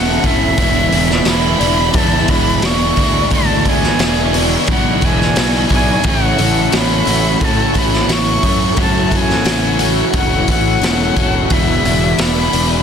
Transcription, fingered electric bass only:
Already playing: E1
0.24 E1
0.58 E1
0.91 E1
1.25 E1
1.60 E1
1.95 E2
2.29 E1
2.62 E1
2.98 D2
3.31 D2
3.99 E1
4.68 B1
5.03 E1
5.36 B1
5.71 B1
6.04 A1
6.39 A1
6.73 A1
7.07 A1
7.41 A2
7.75 A1
8.08 A1
8.43 F#2
8.77 F#2
9.45 A1
10.14 E1
10.48 A1
10.81 E1
11.17 E1
11.51 E1
11.85 E1
12.19 E1
12.54 E1

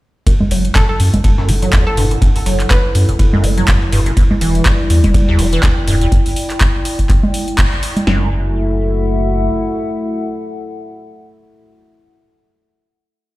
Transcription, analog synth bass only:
0.51 F#1
1.00 F#2
1.14 F#1
1.49 F#1
1.97 F#1
2.46 F#1
2.95 F#2
3.09 F#1
3.44 F#1
3.92 F#1
4.41 E1
4.90 E2
5.04 E1
5.39 E1
5.88 E1
8.07 F#1

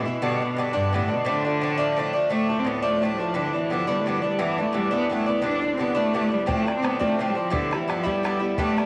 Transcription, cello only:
0.02 A2
0.06 B2
0.23 B2
0.75 G2
0.95 A2
1.13 B2
1.30 D3
2.32 A3
2.59 C4
2.67 B3
2.84 A3
2.90 A3
2.99 A3
3.09 G3 A3
3.19 F3
3.36 D3
3.54 E3
3.65 E3
3.71 F3
3.89 G3
4.01 A3
4.09 G3
4.19 F3
4.24 G3
4.41 E3
4.62 A3
4.78 G3
4.95 B3
5.15 A3
5.30 B3
5.46 D4
5.68 D4
5.73 C4
5.82 B3
5.97 A3
6.34 G3
6.51 A3
6.76 C4
6.85 B3
7.03 A3
7.30 G3
7.38 F3
7.54 D3
7.74 E3
7.89 F3
8.07 G3
8.61 A3

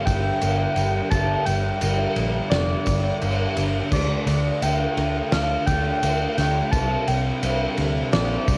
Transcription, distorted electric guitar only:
Already playing: G2
0.06 D3 G3
0.42 G2 D3 G3
0.77 D3 G3
1.11 G2 D3 G3
1.46 D3 G3
1.81 G2 D3 G3
2.87 D3 G3
3.22 G2 D3 G3
3.56 D3 G3
3.92 D3 A3 D4
4.26 A3 D4
4.62 D3 A3 D4
5.67 A3 D4
6.03 D3 A3 D4
6.37 A3 D4
6.72 C3 G3 C4
7.08 G3 C4
7.43 C3 G3 C4
8.47 G3 C4

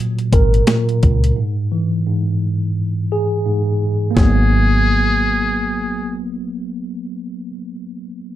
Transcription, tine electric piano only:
Already playing: A#2 F#3
0.33 A#4
0.68 A#2
1.36 G#2
1.72 E3
2.06 G#2
3.12 G#4
3.46 G#2
4.11 A#3
4.17 F#3
4.23 B3

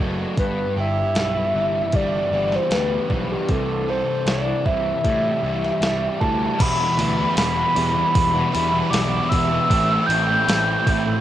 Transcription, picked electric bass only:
0.00 F#1
0.37 G1
0.76 G1
1.15 B1
1.55 G1
1.93 G1
2.32 G1
2.71 D2
3.10 B1
3.49 C2
4.26 C2
4.66 C2
5.05 A2
5.43 C2
5.81 C2
6.21 D2
6.60 E1
6.97 D2
7.37 E1
7.77 E2
8.15 E1
8.55 E1
8.93 B1
9.32 E1
9.70 A1
10.09 A1
10.48 A1
10.87 A1

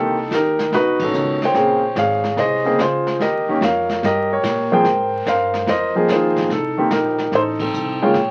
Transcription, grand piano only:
Already playing: D#3 A#3 C4 D#4 G4 A4
0.34 D#4 G4 A#4
0.74 D#4 F#4 B4
1.03 C#4 D#4 A4
1.13 D#3 B3 C#4 A4
1.45 C5 C#5 G5
1.54 C#3 A#3 C4 G#4
1.98 G#4 C#5 F5
2.39 G#4 C5 D#5
2.64 C#3 A#3 C4 G#4
2.80 F4 G#4 C5
3.21 G4 A#4 D#5
3.49 D#3 A#3 C#4 G4
3.63 A#4 C#5 F5
4.05 G4 A#4 D#5
4.32 G4 A#4 C#5
4.72 F3 A#3 C4 G#4 A#4 C5 G5
5.28 A#4 C5 F5
5.69 A#4 C5 D#5
5.95 F3 A#3 C4 G#4
6.11 D#4 F4 C5
6.52 D#4 A4
6.78 D#3 A#3 C4 G4
6.92 D#4 G4 A#4
7.35 D#4 A4 C5
7.62 C4 D#4 A4
8.02 C#3 G#3 A#3 F4 C#5 G5

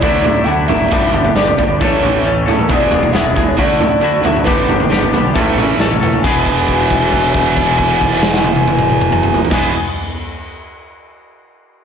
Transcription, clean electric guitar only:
0.02 D3 F#3 A3 D4 E4
0.46 F#3 A3 D4 E4
0.69 A3 D4 E4
0.91 G2 D3 G3 B3 D4 G4
1.13 G3 B3 D4 G4
1.36 G2 D3 G3 B3 D4 G4
1.57 G3 B3 D4 G4
1.79 A2 E3 A3 C#4 A4
2.23 E3 A3 C#4 A4
2.46 A3 C#4 A4
2.68 E2 B2 E3 G#3 B3 G#4
2.91 E3 G#3 B3 G#4
3.13 E2 B2 E3 G#3 B3 G#4
3.36 E3 G#3 B3 G#4
3.57 D3 A3 E4 F#4
4.01 D3 A3 E4 F#4
4.23 A3 E4 F#4
4.45 G2 D3 G3 B3 D4 G4
4.68 G3 B3 D4 G4
4.90 G2 D3 G3 B3 D4 G4
5.12 G3 B3 D4 G4
5.33 A2 E3 A3 C#4 A4
5.79 E3 A3 C#4 A4
6.01 A3 C#4 A4
6.22 E2 B2 E3 G#3 B3
6.27 G#4
9.51 E2 B2 E3 G#3 B3
9.55 G#4

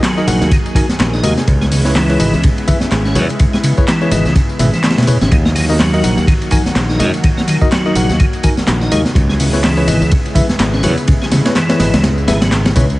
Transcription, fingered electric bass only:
0.28 A#1
0.41 D#2
0.89 muted fingered electric bass stroke
1.00 A#1
1.24 D#2
1.48 C#2
2.20 G#1
2.34 C#2
2.82 muted fingered electric bass stroke
2.92 G#1
3.15 E2
4.12 G#1
4.25 C#2
4.59 G#1
5.21 G#1
5.32 D#2
6.04 A#1
6.17 D#2
6.65 muted fingered electric bass stroke
6.76 A#1
7.00 F#2
7.95 A#1
8.10 D#2
8.58 muted fingered electric bass stroke
8.68 A#1
8.92 D#2
9.15 C#2
9.88 G#1
10.01 C#2
10.50 muted fingered electric bass stroke
10.60 G#1
10.84 E2
11.80 G#1
11.93 C#2
12.28 G#1
12.76 C#2

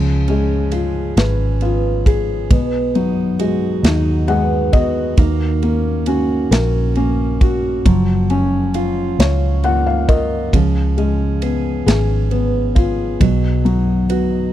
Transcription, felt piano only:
Already playing: C#3
0.29 G#3
0.72 F4
1.18 B4
1.62 F4
2.07 G#4
2.51 B2
2.95 F#3
3.39 G#3
3.84 D#4
4.28 G#3 F#5
4.73 B3 D#5
5.18 D#3
5.63 A#3
6.07 C#4
6.51 A#4
6.97 C#4
7.41 F#4
7.86 F#3
8.30 C#4
8.75 F4
9.20 C#5
9.64 F4 F#5
9.87 F5
10.08 A#4 D#5
10.54 C#3
10.97 G#3
11.42 B3
11.86 G#4
12.31 B3
12.75 F4
13.20 B2
13.65 F#3
14.10 B3

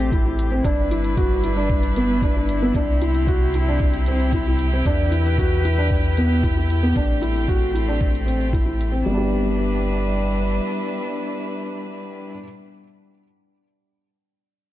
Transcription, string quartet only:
Already playing: A3 C4 G4
0.65 G3 D4 E4 B4
2.74 C3 C4 G4
4.86 E3 B4
6.96 A3 C4
9.07 G3 D4 E4 B4

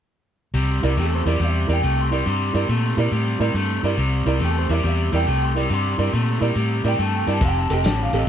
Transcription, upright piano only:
0.83 E4 A#4 D5
1.25 E4 A#4 D5
1.67 E4 A#4 D5
2.10 E4 A#4 D5
2.53 E4 A#4 D5
2.97 E4 A#4 D5
3.39 E4 A#4 D5
3.83 E4 A#4 D5
4.26 E4 A#4 D5
4.69 E4 A#4 E5
5.12 E4 A#4 D5
5.55 E4 A#4 D5
5.97 E4 A#4 D5
6.40 E4 A#4 D5
6.84 E4 A#4 D5
7.26 E4 A#4 D5
7.70 G4 A4 D#5
8.13 G4 A4 D#5

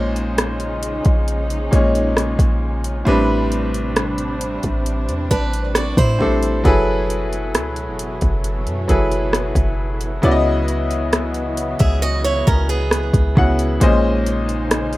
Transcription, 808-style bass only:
Already playing: A#1
1.06 A#1
1.73 A#1
2.39 A#1
3.07 A1
4.64 A1
5.08 E2
5.31 A1
5.97 A2
6.21 A1
6.65 F#1
7.55 C#2
7.88 F#1
8.22 F#1
8.67 F#2
8.89 F#1
9.55 F#1
10.23 C#2
11.80 C#2
12.48 C#2
13.14 C#2
13.37 C#2
13.82 A#1

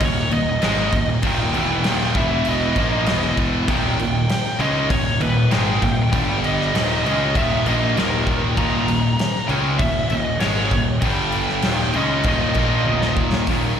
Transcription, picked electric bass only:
0.01 D#1
0.33 D#1
0.63 G#1
0.93 D#1
1.23 D#1
1.54 E1
1.85 D#1
2.15 E1
2.76 A#1
3.07 E1
3.69 D#1
3.99 D#1
4.59 C#2
4.90 D#1
5.21 D#1
5.52 G#1
5.83 D#1
6.13 G1
6.75 D#1
7.05 C#2
7.35 D#1
7.66 A#1
7.97 D#1
8.57 D#1
8.88 D#1
9.49 C#2
9.79 D#1
10.11 D#1
10.41 G#1
10.71 D#1
11.02 G1
11.64 D#1
11.94 C#2
12.24 D#1
12.55 A#1
12.87 D#1
13.48 D#1

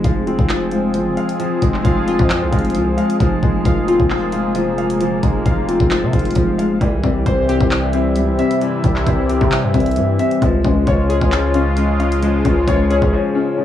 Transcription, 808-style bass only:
0.04 F1
0.39 F1
0.95 G1
1.07 F1
1.62 F1
1.85 F1
2.19 F2
2.42 C2
2.52 F1
2.75 C2
3.20 F1
3.43 F1
3.65 F1
4.00 F1
5.23 F1
5.46 F1
5.80 F1
6.03 C3
6.13 F1
6.36 F1
6.81 C2
7.04 C2
7.26 C2
7.61 C2
8.16 C#2
8.28 C2
8.84 C2
9.07 C2
9.41 C3
9.64 G2
9.74 C2
9.97 G2
10.42 C#2
10.65 C#2
10.87 C#2
11.21 C#2
12.45 C#2
12.68 C#2
13.02 C#2

